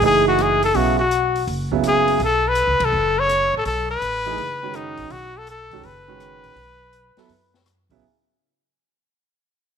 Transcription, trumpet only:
0, 0, Header, 1, 2, 480
1, 0, Start_track
1, 0, Tempo, 363636
1, 985, Time_signature, 4, 2, 24, 8
1, 12903, End_track
2, 0, Start_track
2, 0, Title_t, "Trumpet"
2, 0, Program_c, 0, 56
2, 72, Note_on_c, 0, 68, 90
2, 345, Note_off_c, 0, 68, 0
2, 366, Note_on_c, 0, 66, 78
2, 554, Note_on_c, 0, 68, 85
2, 574, Note_off_c, 0, 66, 0
2, 841, Note_off_c, 0, 68, 0
2, 848, Note_on_c, 0, 69, 80
2, 999, Note_on_c, 0, 66, 75
2, 1019, Note_off_c, 0, 69, 0
2, 1299, Note_off_c, 0, 66, 0
2, 1307, Note_on_c, 0, 66, 72
2, 1903, Note_off_c, 0, 66, 0
2, 2476, Note_on_c, 0, 68, 88
2, 2899, Note_off_c, 0, 68, 0
2, 2956, Note_on_c, 0, 69, 91
2, 3277, Note_on_c, 0, 71, 97
2, 3297, Note_off_c, 0, 69, 0
2, 3757, Note_on_c, 0, 69, 91
2, 3777, Note_off_c, 0, 71, 0
2, 4213, Note_on_c, 0, 73, 100
2, 4233, Note_off_c, 0, 69, 0
2, 4677, Note_off_c, 0, 73, 0
2, 4716, Note_on_c, 0, 69, 86
2, 4829, Note_off_c, 0, 69, 0
2, 4837, Note_on_c, 0, 69, 92
2, 5126, Note_off_c, 0, 69, 0
2, 5159, Note_on_c, 0, 71, 106
2, 6280, Note_on_c, 0, 63, 87
2, 6300, Note_off_c, 0, 71, 0
2, 6754, Note_on_c, 0, 66, 85
2, 6774, Note_off_c, 0, 63, 0
2, 7096, Note_on_c, 0, 69, 86
2, 7116, Note_off_c, 0, 66, 0
2, 7242, Note_off_c, 0, 69, 0
2, 7261, Note_on_c, 0, 69, 86
2, 7724, Note_on_c, 0, 71, 91
2, 7744, Note_off_c, 0, 69, 0
2, 10114, Note_off_c, 0, 71, 0
2, 12903, End_track
0, 0, End_of_file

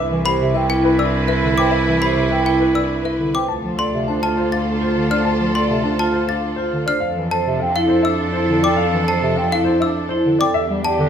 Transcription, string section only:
0, 0, Header, 1, 2, 480
1, 0, Start_track
1, 0, Key_signature, 0, "major"
1, 0, Tempo, 588235
1, 1408, Time_signature, 3, 2, 24, 8
1, 9051, End_track
2, 0, Start_track
2, 0, Title_t, "String section"
2, 0, Program_c, 0, 48
2, 0, Note_on_c, 0, 64, 73
2, 0, Note_on_c, 0, 71, 75
2, 2699, Note_off_c, 0, 64, 0
2, 2700, Note_off_c, 0, 71, 0
2, 2845, Note_on_c, 0, 65, 61
2, 2845, Note_on_c, 0, 69, 65
2, 5574, Note_off_c, 0, 65, 0
2, 5574, Note_off_c, 0, 69, 0
2, 5732, Note_on_c, 0, 69, 66
2, 5735, Note_on_c, 0, 62, 67
2, 8458, Note_off_c, 0, 69, 0
2, 8459, Note_off_c, 0, 62, 0
2, 8613, Note_on_c, 0, 62, 77
2, 8615, Note_on_c, 0, 67, 78
2, 9051, Note_off_c, 0, 62, 0
2, 9051, Note_off_c, 0, 67, 0
2, 9051, End_track
0, 0, End_of_file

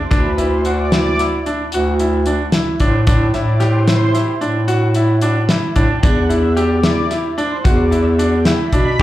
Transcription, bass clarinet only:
0, 0, Header, 1, 2, 480
1, 0, Start_track
1, 0, Key_signature, 1, "minor"
1, 0, Tempo, 538600
1, 99, Time_signature, 11, 3, 24, 8
1, 8042, End_track
2, 0, Start_track
2, 0, Title_t, "Bass clarinet"
2, 0, Program_c, 0, 71
2, 104, Note_on_c, 0, 38, 87
2, 1346, Note_off_c, 0, 38, 0
2, 1538, Note_on_c, 0, 38, 97
2, 2159, Note_off_c, 0, 38, 0
2, 2495, Note_on_c, 0, 45, 87
2, 2704, Note_off_c, 0, 45, 0
2, 2739, Note_on_c, 0, 45, 88
2, 2946, Note_off_c, 0, 45, 0
2, 2977, Note_on_c, 0, 45, 91
2, 3807, Note_off_c, 0, 45, 0
2, 3937, Note_on_c, 0, 45, 82
2, 4974, Note_off_c, 0, 45, 0
2, 5135, Note_on_c, 0, 45, 90
2, 5240, Note_off_c, 0, 45, 0
2, 5377, Note_on_c, 0, 40, 96
2, 6412, Note_off_c, 0, 40, 0
2, 6819, Note_on_c, 0, 40, 105
2, 7648, Note_off_c, 0, 40, 0
2, 7774, Note_on_c, 0, 47, 84
2, 7983, Note_off_c, 0, 47, 0
2, 8042, End_track
0, 0, End_of_file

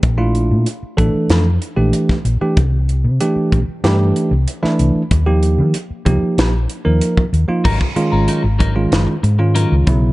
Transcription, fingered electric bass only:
0, 0, Header, 1, 3, 480
1, 0, Start_track
1, 0, Tempo, 634249
1, 27, Time_signature, 4, 2, 24, 8
1, 7663, End_track
2, 0, Start_track
2, 0, Title_t, "Fingered electric bass"
2, 0, Program_c, 0, 33
2, 23, Note_on_c, 0, 34, 80
2, 386, Note_on_c, 0, 46, 60
2, 397, Note_off_c, 0, 34, 0
2, 489, Note_off_c, 0, 46, 0
2, 743, Note_on_c, 0, 33, 64
2, 848, Note_off_c, 0, 33, 0
2, 980, Note_on_c, 0, 41, 80
2, 1189, Note_off_c, 0, 41, 0
2, 1339, Note_on_c, 0, 34, 75
2, 1445, Note_off_c, 0, 34, 0
2, 1701, Note_on_c, 0, 34, 78
2, 1806, Note_off_c, 0, 34, 0
2, 1946, Note_on_c, 0, 36, 92
2, 2303, Note_on_c, 0, 48, 74
2, 2314, Note_off_c, 0, 36, 0
2, 2407, Note_off_c, 0, 48, 0
2, 2667, Note_on_c, 0, 35, 66
2, 2769, Note_off_c, 0, 35, 0
2, 2904, Note_on_c, 0, 43, 82
2, 3111, Note_off_c, 0, 43, 0
2, 3262, Note_on_c, 0, 36, 73
2, 3366, Note_off_c, 0, 36, 0
2, 3629, Note_on_c, 0, 36, 70
2, 3731, Note_off_c, 0, 36, 0
2, 3866, Note_on_c, 0, 39, 80
2, 4224, Note_on_c, 0, 51, 64
2, 4235, Note_off_c, 0, 39, 0
2, 4328, Note_off_c, 0, 51, 0
2, 4587, Note_on_c, 0, 37, 66
2, 4690, Note_off_c, 0, 37, 0
2, 4828, Note_on_c, 0, 34, 82
2, 5033, Note_off_c, 0, 34, 0
2, 5193, Note_on_c, 0, 39, 73
2, 5293, Note_off_c, 0, 39, 0
2, 5545, Note_on_c, 0, 39, 72
2, 5649, Note_off_c, 0, 39, 0
2, 5791, Note_on_c, 0, 32, 97
2, 5892, Note_off_c, 0, 32, 0
2, 6149, Note_on_c, 0, 32, 70
2, 6251, Note_off_c, 0, 32, 0
2, 6387, Note_on_c, 0, 32, 82
2, 6696, Note_off_c, 0, 32, 0
2, 6747, Note_on_c, 0, 30, 78
2, 6850, Note_off_c, 0, 30, 0
2, 6988, Note_on_c, 0, 44, 82
2, 7297, Note_off_c, 0, 44, 0
2, 7355, Note_on_c, 0, 37, 80
2, 7456, Note_off_c, 0, 37, 0
2, 7471, Note_on_c, 0, 35, 83
2, 7663, Note_off_c, 0, 35, 0
2, 7663, End_track
3, 0, Start_track
3, 0, Title_t, "Muted fingered electric bass strokes"
3, 625, Note_on_c, 9, 29, 37
3, 701, Note_off_c, 9, 29, 0
3, 863, Note_on_c, 9, 29, 33
3, 939, Note_off_c, 9, 29, 0
3, 1583, Note_on_c, 9, 29, 33
3, 1659, Note_off_c, 9, 29, 0
3, 2542, Note_on_c, 9, 29, 34
3, 2618, Note_off_c, 9, 29, 0
3, 2787, Note_on_c, 9, 29, 33
3, 2863, Note_off_c, 9, 29, 0
3, 3509, Note_on_c, 9, 29, 34
3, 3585, Note_off_c, 9, 29, 0
3, 3746, Note_on_c, 9, 29, 35
3, 3822, Note_off_c, 9, 29, 0
3, 4468, Note_on_c, 9, 29, 35
3, 4544, Note_off_c, 9, 29, 0
3, 4708, Note_on_c, 9, 29, 34
3, 4784, Note_off_c, 9, 29, 0
3, 5428, Note_on_c, 9, 29, 33
3, 5504, Note_off_c, 9, 29, 0
3, 5667, Note_on_c, 9, 29, 33
3, 5742, Note_off_c, 9, 29, 0
3, 6024, Note_on_c, 9, 29, 33
3, 6100, Note_off_c, 9, 29, 0
3, 7663, End_track
0, 0, End_of_file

